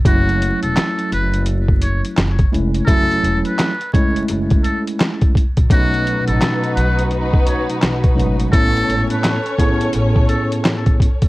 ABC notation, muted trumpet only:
X:1
M:4/4
L:1/16
Q:"Swing 16ths" 1/4=85
K:F#dor
V:1 name="Muted trumpet"
F3 A3 B2 z2 c z4 z | A3 B3 c2 z2 A z4 z | F3 A3 B2 z2 c z4 z | A3 B3 c2 z2 A z4 z |]